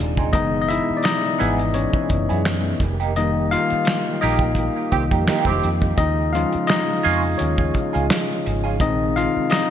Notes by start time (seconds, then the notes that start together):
Already playing: C3 D#3 G#3 C4 D4 D#4 D5 D#5
0.00 D#1, closed hi-hat
0.17 C4 D#4 G#4, kick
0.33 F#1 B2 E3 G#3 B3 D#4 D#5, kick, closed hi-hat
0.62 D#5
0.68 E4 E5, closed hi-hat
0.90 muted fingered electric bass stroke
0.97 D5
1.03 D#4 D#5, finger snap, muted clean electric guitar stroke, snare, closed hi-hat
1.39 G#1 E3 G#3 B3 E4 G#4, closed hi-hat
1.59 closed hi-hat
1.74 C#4 C#5, closed hi-hat
1.93 kick
2.09 F#1, kick, closed hi-hat
2.29 F#2 B3 E4 G#4, closed hi-hat
2.45 finger snap, snare, closed hi-hat
2.80 F1 D#3 A#3 G4, kick, closed hi-hat
3.00 A#3 D#4 G4, closed hi-hat
3.16 D#3 G3 A#3 D#4 D#5, closed hi-hat
3.51 F4 F5, closed hi-hat
3.70 muted fingered electric bass stroke, closed hi-hat
3.85 finger snap, snare, closed hi-hat
4.21 A#1 A#3 D#4 G4 D#5, open hi-hat
4.39 kick, closed hi-hat
4.55 kick, closed hi-hat
4.92 C2 D#3 G3 A#3 C4 G4, kick, closed hi-hat
5.11 F2 A#3 D#4 G4, kick, closed hi-hat
5.27 A#3 D#4 G4, finger snap, muted fingered electric bass stroke, snare, closed hi-hat
5.45 F1 D#3 C4 G4, kick
5.64 F2, closed hi-hat
5.82 kick, closed hi-hat
5.97 D#2 C#3 G#3 D#4 F4 D#5, kick, closed hi-hat
6.33 F3 G#3 C#4 F4 F5, closed hi-hat
6.52 muted fingered electric bass stroke, closed hi-hat
6.67 D#4 D#5, finger snap, muted clean electric guitar stroke, snare, closed hi-hat
7.03 F2 C#4 F4 G#4, open hi-hat
7.38 D#2 C#4 C#5, closed hi-hat
7.58 kick
7.74 kick, closed hi-hat
7.93 C#2 C#4 F4 G#4, closed hi-hat
8.10 finger snap, snare, closed hi-hat
8.46 G#1, closed hi-hat
8.64 C#4 F4 G#4
8.80 A#1 C3 D#3 G#3 C4 D#4 D#5, kick, closed hi-hat
9.16 F4 F5, closed hi-hat
9.37 muted fingered electric bass stroke
9.50 D#4 D#5, finger snap, muted clean electric guitar stroke, snare, closed hi-hat